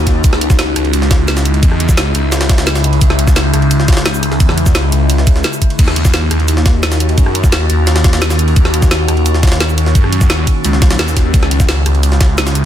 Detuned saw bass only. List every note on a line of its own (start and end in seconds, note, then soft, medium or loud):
0.00 0.23 D#2 loud
0.24 0.75 C#2 loud
0.76 1.61 C#2 loud
1.63 1.96 E2 loud
1.97 2.13 C#2 loud
2.15 3.00 C#2 loud
3.01 3.52 C#2 medium
3.54 4.39 C#2 loud
4.40 4.74 E2 medium
4.75 4.91 C#2 loud
4.92 5.43 C#2 loud
5.79 6.30 D#2 loud
6.31 7.16 D#2 loud
7.18 7.51 F#2 loud
7.52 7.68 D#2 loud
7.70 8.55 D#2 loud
9.08 9.94 D#2 loud
9.95 10.28 F#2 loud
10.30 10.46 D#2 medium
10.65 10.98 C#2 medium
10.99 11.32 D#2 loud
11.34 11.84 C#2 loud
11.86 12.65 C#2 loud